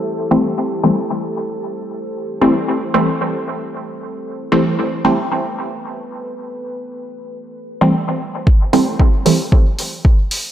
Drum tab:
HH |--------|--------|--------|--------|
BD |--------|--------|--------|--------|

HH |-o-o-o-o|
BD |o-o-o-o-|